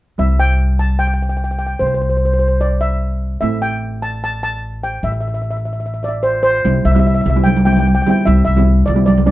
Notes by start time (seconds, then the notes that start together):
0.18 C2 G3 C4 E4 E5
0.40 G5
0.79 A5
0.99 G5
1.07 G5
1.14 G5
1.23 G5
1.29 G5
1.37 G5
1.44 G5
1.51 G5
1.59 G5
1.67 G5
1.79 C2 C5
1.87 C5
1.94 C5
2.02 C5
2.09 C5
2.17 C5
2.25 C5
2.33 C5
2.39 C5
2.48 C5
2.61 D5
2.81 E5
3.41 A1 A3 C4 E4 E5
3.62 G5
4.02 A5
4.24 A5
4.43 A5
4.83 G5
5.03 A1 E5
5.12 E5
5.21 E5
5.28 E5
5.34 E5
5.42 E5
5.50 E5
5.57 E5
5.65 E5
5.73 E5
5.80 E5
5.86 E5
5.94 E5
6.03 D5 E5
6.08 E5
6.23 C5
6.43 C5
6.64 C2 G3 C4 E4
6.85 C2 E5
6.92 G3 C4 E4 E5
6.96 E5, low conga
7.07 E5
7.15 E5
7.21 E5
7.26 C2, low conga
7.30 E5
7.36 G3 C4 E4
7.44 G5, high conga
7.57 high conga
7.65 G3 C4 E4 G5
7.73 G5
7.77 G5, high conga
7.88 G5
7.95 G5
8.02 G5
8.07 G3 C4 E4 G5, low conga
8.25 C2 G3 C4 E4 E5
8.45 C2 E5
8.56 G3 C4 E4, low conga
8.86 C2 D5, low conga
8.96 G3 C4 E4
9.06 D5, high conga
9.17 high conga
9.26 G3 C4 D4 D5